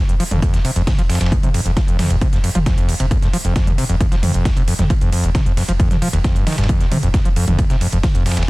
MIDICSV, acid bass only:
0, 0, Header, 1, 2, 480
1, 0, Start_track
1, 0, Tempo, 447761
1, 1414, Time_signature, 4, 2, 24, 8
1, 9111, End_track
2, 0, Start_track
2, 0, Title_t, "Acid bass"
2, 0, Program_c, 0, 38
2, 95, Note_on_c, 0, 41, 80
2, 160, Note_off_c, 0, 41, 0
2, 213, Note_on_c, 0, 53, 79
2, 254, Note_off_c, 0, 53, 0
2, 335, Note_on_c, 0, 41, 96
2, 433, Note_off_c, 0, 41, 0
2, 454, Note_on_c, 0, 41, 84
2, 575, Note_on_c, 0, 39, 78
2, 591, Note_off_c, 0, 41, 0
2, 640, Note_off_c, 0, 39, 0
2, 693, Note_on_c, 0, 48, 75
2, 760, Note_off_c, 0, 48, 0
2, 815, Note_on_c, 0, 41, 77
2, 880, Note_off_c, 0, 41, 0
2, 933, Note_on_c, 0, 41, 88
2, 1000, Note_off_c, 0, 41, 0
2, 1055, Note_on_c, 0, 53, 76
2, 1094, Note_off_c, 0, 53, 0
2, 1174, Note_on_c, 0, 41, 102
2, 1274, Note_off_c, 0, 41, 0
2, 1295, Note_on_c, 0, 41, 77
2, 1413, Note_on_c, 0, 39, 82
2, 1429, Note_off_c, 0, 41, 0
2, 1480, Note_off_c, 0, 39, 0
2, 1534, Note_on_c, 0, 48, 76
2, 1600, Note_off_c, 0, 48, 0
2, 1653, Note_on_c, 0, 41, 80
2, 1720, Note_off_c, 0, 41, 0
2, 1774, Note_on_c, 0, 41, 77
2, 1840, Note_off_c, 0, 41, 0
2, 1893, Note_on_c, 0, 53, 87
2, 1933, Note_off_c, 0, 53, 0
2, 2014, Note_on_c, 0, 41, 104
2, 2112, Note_off_c, 0, 41, 0
2, 2133, Note_on_c, 0, 41, 80
2, 2255, Note_on_c, 0, 39, 75
2, 2271, Note_off_c, 0, 41, 0
2, 2320, Note_off_c, 0, 39, 0
2, 2373, Note_on_c, 0, 48, 88
2, 2440, Note_off_c, 0, 48, 0
2, 2495, Note_on_c, 0, 41, 80
2, 2560, Note_off_c, 0, 41, 0
2, 2613, Note_on_c, 0, 41, 77
2, 2680, Note_off_c, 0, 41, 0
2, 2735, Note_on_c, 0, 53, 75
2, 2774, Note_off_c, 0, 53, 0
2, 2852, Note_on_c, 0, 41, 104
2, 2953, Note_off_c, 0, 41, 0
2, 2974, Note_on_c, 0, 41, 83
2, 3093, Note_on_c, 0, 39, 78
2, 3109, Note_off_c, 0, 41, 0
2, 3160, Note_off_c, 0, 39, 0
2, 3215, Note_on_c, 0, 48, 77
2, 3280, Note_off_c, 0, 48, 0
2, 3333, Note_on_c, 0, 41, 83
2, 3400, Note_off_c, 0, 41, 0
2, 3455, Note_on_c, 0, 41, 82
2, 3520, Note_off_c, 0, 41, 0
2, 3574, Note_on_c, 0, 53, 81
2, 3614, Note_off_c, 0, 53, 0
2, 3695, Note_on_c, 0, 41, 103
2, 3793, Note_off_c, 0, 41, 0
2, 3813, Note_on_c, 0, 41, 86
2, 3935, Note_on_c, 0, 39, 82
2, 3951, Note_off_c, 0, 41, 0
2, 4000, Note_off_c, 0, 39, 0
2, 4053, Note_on_c, 0, 48, 80
2, 4120, Note_off_c, 0, 48, 0
2, 4174, Note_on_c, 0, 41, 80
2, 4240, Note_off_c, 0, 41, 0
2, 4293, Note_on_c, 0, 41, 84
2, 4360, Note_off_c, 0, 41, 0
2, 4414, Note_on_c, 0, 53, 78
2, 4454, Note_off_c, 0, 53, 0
2, 4532, Note_on_c, 0, 41, 103
2, 4633, Note_off_c, 0, 41, 0
2, 4654, Note_on_c, 0, 41, 76
2, 4772, Note_on_c, 0, 39, 87
2, 4788, Note_off_c, 0, 41, 0
2, 4840, Note_off_c, 0, 39, 0
2, 4895, Note_on_c, 0, 48, 77
2, 4960, Note_off_c, 0, 48, 0
2, 5013, Note_on_c, 0, 41, 77
2, 5080, Note_off_c, 0, 41, 0
2, 5134, Note_on_c, 0, 41, 76
2, 5200, Note_off_c, 0, 41, 0
2, 5253, Note_on_c, 0, 53, 81
2, 5293, Note_off_c, 0, 53, 0
2, 5374, Note_on_c, 0, 41, 105
2, 5472, Note_off_c, 0, 41, 0
2, 5493, Note_on_c, 0, 41, 79
2, 5614, Note_on_c, 0, 39, 76
2, 5630, Note_off_c, 0, 41, 0
2, 5680, Note_off_c, 0, 39, 0
2, 5733, Note_on_c, 0, 48, 87
2, 5800, Note_off_c, 0, 48, 0
2, 5854, Note_on_c, 0, 41, 78
2, 5920, Note_off_c, 0, 41, 0
2, 5972, Note_on_c, 0, 41, 75
2, 6040, Note_off_c, 0, 41, 0
2, 6094, Note_on_c, 0, 53, 77
2, 6134, Note_off_c, 0, 53, 0
2, 6212, Note_on_c, 0, 41, 104
2, 6313, Note_off_c, 0, 41, 0
2, 6334, Note_on_c, 0, 41, 77
2, 6400, Note_off_c, 0, 41, 0
2, 6452, Note_on_c, 0, 53, 106
2, 6520, Note_off_c, 0, 53, 0
2, 6573, Note_on_c, 0, 39, 76
2, 6639, Note_off_c, 0, 39, 0
2, 6692, Note_on_c, 0, 41, 104
2, 6814, Note_on_c, 0, 43, 79
2, 6830, Note_off_c, 0, 41, 0
2, 6912, Note_off_c, 0, 43, 0
2, 6932, Note_on_c, 0, 51, 79
2, 7033, Note_off_c, 0, 51, 0
2, 7054, Note_on_c, 0, 43, 75
2, 7152, Note_off_c, 0, 43, 0
2, 7173, Note_on_c, 0, 41, 81
2, 7295, Note_on_c, 0, 39, 82
2, 7311, Note_off_c, 0, 41, 0
2, 7360, Note_off_c, 0, 39, 0
2, 7413, Note_on_c, 0, 48, 74
2, 7480, Note_off_c, 0, 48, 0
2, 7534, Note_on_c, 0, 41, 81
2, 7600, Note_off_c, 0, 41, 0
2, 7653, Note_on_c, 0, 41, 88
2, 7720, Note_off_c, 0, 41, 0
2, 7775, Note_on_c, 0, 53, 75
2, 7814, Note_off_c, 0, 53, 0
2, 7893, Note_on_c, 0, 41, 109
2, 7993, Note_off_c, 0, 41, 0
2, 8015, Note_on_c, 0, 41, 81
2, 8133, Note_on_c, 0, 39, 81
2, 8149, Note_off_c, 0, 41, 0
2, 8200, Note_off_c, 0, 39, 0
2, 8254, Note_on_c, 0, 48, 76
2, 8320, Note_off_c, 0, 48, 0
2, 8373, Note_on_c, 0, 41, 76
2, 8440, Note_off_c, 0, 41, 0
2, 8495, Note_on_c, 0, 41, 78
2, 8560, Note_off_c, 0, 41, 0
2, 8613, Note_on_c, 0, 53, 84
2, 8653, Note_off_c, 0, 53, 0
2, 8734, Note_on_c, 0, 41, 103
2, 8832, Note_off_c, 0, 41, 0
2, 8853, Note_on_c, 0, 41, 75
2, 8974, Note_on_c, 0, 39, 78
2, 8990, Note_off_c, 0, 41, 0
2, 9040, Note_off_c, 0, 39, 0
2, 9111, End_track
0, 0, End_of_file